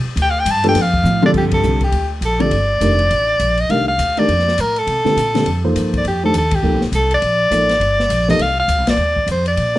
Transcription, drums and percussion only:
0.17 ride
0.46 hi-hat pedal, ride
0.64 ride
0.75 snare, ride
0.93 kick
1.05 hi-hat pedal, high tom
1.22 high tom
1.34 kick, crash
1.51 kick, ride
1.63 hi-hat pedal
1.81 kick, ride
1.92 ride
2.22 hi-hat pedal, ride
2.40 ride
2.51 ride
2.81 hi-hat pedal, ride
2.99 ride
3.11 ride
3.40 hi-hat pedal, ride
3.57 ride
3.70 ride
3.99 hi-hat pedal, ride
4.17 ride
4.29 ride
4.39 snare
4.48 snare
4.58 hi-hat pedal, ride
4.76 ride
4.87 ride
5.06 snare
5.17 hi-hat pedal, ride
5.35 snare, ride
5.46 ride
5.76 hi-hat pedal, ride
5.94 kick, ride
6.05 ride
6.34 hi-hat pedal, ride
6.51 kick, ride
6.81 snare
6.93 hi-hat pedal, ride
7.11 ride
7.22 ride
7.51 hi-hat pedal, ride
7.69 snare, ride
7.81 ride
8.00 snare
8.10 hi-hat pedal, ride
8.29 snare
8.39 ride
8.69 hi-hat pedal, ride
8.87 snare, ride
9.16 kick
9.28 hi-hat pedal, ride
9.46 ride
9.57 ride

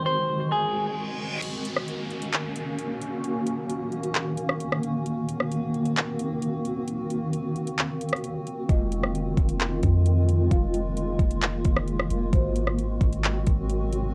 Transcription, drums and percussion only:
1.42 closed hi-hat, crash
1.65 closed hi-hat
1.76 cross-stick
1.88 closed hi-hat
2.10 closed hi-hat
2.22 closed hi-hat
2.33 clap, closed hi-hat
2.56 closed hi-hat
2.79 closed hi-hat
3.02 closed hi-hat
3.24 closed hi-hat
3.47 closed hi-hat
3.70 closed hi-hat
3.92 closed hi-hat
4.03 closed hi-hat
4.15 clap, closed hi-hat
4.37 closed hi-hat
4.49 cross-stick
4.60 closed hi-hat
4.72 cross-stick
4.83 closed hi-hat
5.06 closed hi-hat
5.29 closed hi-hat
5.40 cross-stick
5.51 closed hi-hat
5.74 closed hi-hat
5.85 closed hi-hat
5.97 clap, closed hi-hat
6.19 closed hi-hat
6.42 closed hi-hat
6.65 closed hi-hat
6.88 closed hi-hat
7.10 closed hi-hat
7.33 closed hi-hat
7.56 closed hi-hat
7.67 closed hi-hat
7.78 clap, closed hi-hat
8.01 closed hi-hat
8.09 closed hi-hat
8.13 cross-stick, closed hi-hat
8.24 closed hi-hat
8.47 closed hi-hat
8.69 kick, closed hi-hat
8.92 closed hi-hat
9.04 cross-stick
9.15 closed hi-hat
9.37 kick, closed hi-hat
9.49 closed hi-hat
9.60 clap, closed hi-hat
9.83 kick, closed hi-hat
10.06 closed hi-hat
10.29 closed hi-hat
10.51 kick, closed hi-hat
10.74 closed hi-hat
10.97 closed hi-hat
11.19 kick, closed hi-hat
11.31 closed hi-hat
11.42 clap, closed hi-hat
11.65 kick, closed hi-hat
11.76 cross-stick
11.88 closed hi-hat
11.99 cross-stick
12.10 closed hi-hat
12.33 kick, closed hi-hat
12.56 closed hi-hat
12.67 cross-stick
12.79 closed hi-hat
13.01 kick, closed hi-hat
13.13 closed hi-hat
13.24 clap, closed hi-hat
13.46 kick, closed hi-hat
13.69 closed hi-hat
13.92 closed hi-hat

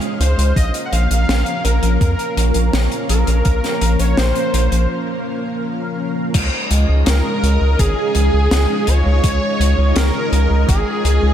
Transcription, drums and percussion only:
0.01 closed hi-hat
0.21 closed hi-hat
0.39 closed hi-hat
0.56 kick, closed hi-hat
0.74 closed hi-hat
0.93 closed hi-hat
1.11 closed hi-hat
1.29 snare, closed hi-hat
1.46 closed hi-hat
1.65 closed hi-hat
1.83 closed hi-hat
2.01 kick, closed hi-hat
2.19 closed hi-hat
2.37 closed hi-hat
2.54 closed hi-hat
2.73 snare, closed hi-hat
2.92 closed hi-hat
3.09 closed hi-hat
3.27 closed hi-hat
3.45 kick, closed hi-hat
3.64 snare, closed hi-hat
3.81 closed hi-hat
3.99 closed hi-hat
4.17 snare, closed hi-hat
4.35 closed hi-hat
4.54 closed hi-hat
4.72 closed hi-hat
6.34 kick, closed hi-hat, crash
6.71 closed hi-hat
7.06 snare, closed hi-hat
7.44 closed hi-hat
7.79 kick, closed hi-hat
8.15 closed hi-hat
8.51 snare, closed hi-hat
8.87 closed hi-hat
9.24 kick, closed hi-hat
9.61 closed hi-hat
9.96 snare, closed hi-hat
10.33 closed hi-hat
10.69 kick, closed hi-hat
11.05 closed hi-hat

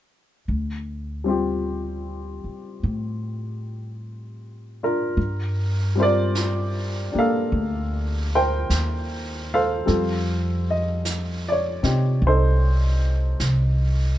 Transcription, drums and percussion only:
5.18 brush sweep
6.35 brush sweep, snare, hi-hat pedal
7.53 brush sweep
8.70 brush sweep, snare, hi-hat pedal
9.88 brush sweep, snare
11.05 brush sweep, snare, hi-hat pedal
11.83 snare
12.22 brush sweep
13.40 brush sweep, snare, hi-hat pedal

